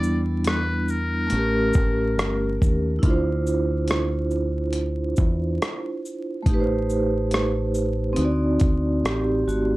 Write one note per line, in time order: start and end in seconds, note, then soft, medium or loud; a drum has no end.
0.00 1.28 E2 medium
0.00 1.27 G3 medium
0.00 1.32 B3 medium
0.00 1.28 D4 medium
0.00 1.30 E4 medium
0.00 0.20 D5 loud
0.00 shaker soft
0.44 0.92 B4 medium
0.44 cross-stick loud
0.44 closed hi-hat medium
0.88 2.61 A#4 medium
0.88 shaker soft
1.27 2.97 A3 medium
1.27 closed hi-hat medium
1.31 1.72 A1 loud
1.31 2.99 C#4 medium
1.31 3.01 G4 medium
1.39 3.03 A#4 medium
1.73 2.15 A1 medium
1.73 kick loud
1.73 shaker soft
2.17 2.57 G1 medium
2.17 cross-stick loud
2.17 closed hi-hat medium
2.62 3.01 D#2 medium
2.62 kick medium
2.62 shaker soft
2.99 6.42 D4 medium
2.99 3.06 E4 medium
3.03 5.14 D2 loud
3.03 6.44 E4 medium
3.03 6.43 F4 medium
3.03 kick loud
3.03 closed hi-hat medium
3.10 6.46 C5 medium
3.47 shaker soft
3.88 cross-stick loud
3.88 closed hi-hat medium
4.31 shaker soft
4.73 closed hi-hat medium
5.16 5.58 E2 medium
5.16 kick medium
5.16 shaker soft
5.62 cross-stick loud
5.62 closed hi-hat medium
6.05 shaker medium
6.42 8.12 A3 medium
6.42 8.14 D#4 medium
6.42 kick loud
6.42 closed hi-hat medium
6.46 8.14 A1 medium
6.46 8.16 G4 medium
6.54 6.58 B4 medium
6.60 8.21 C5 medium
6.90 shaker soft
7.31 cross-stick loud
7.31 closed hi-hat medium
7.74 shaker soft
8.13 9.04 C4 medium
8.13 9.77 D#4 medium
8.13 closed hi-hat medium
8.18 8.57 D2 medium
8.18 9.46 F#4 medium
8.24 9.77 D5 medium
8.60 9.01 D2 medium
8.60 kick loud
8.60 closed hi-hat soft
8.60 shaker soft
9.03 9.43 A1 medium
9.03 9.44 C4 medium
9.03 9.44 G4 medium
9.03 cross-stick loud
9.03 closed hi-hat medium
9.47 9.77 G#1 medium
9.47 9.77 A3 medium
9.47 9.77 F#4 medium
9.47 shaker soft